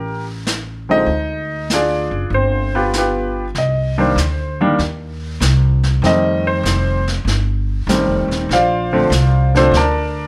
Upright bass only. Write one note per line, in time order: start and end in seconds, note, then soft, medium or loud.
0.00 1.03 A1 medium
1.06 2.07 D2 medium
2.11 2.30 F#1 medium
2.30 3.50 G1 medium
3.55 4.15 C2 medium
4.16 4.76 D2 medium
4.79 5.39 D#2 medium
5.40 6.00 C2 medium
6.02 6.62 F2 medium
6.63 7.24 F1 medium
7.25 7.85 G1 medium
7.87 8.06 A1 medium
8.06 8.28 F1 medium
8.28 8.48 D#1 medium
8.49 9.09 A#1 medium
9.10 9.71 C2 loud
9.71 10.27 D2 medium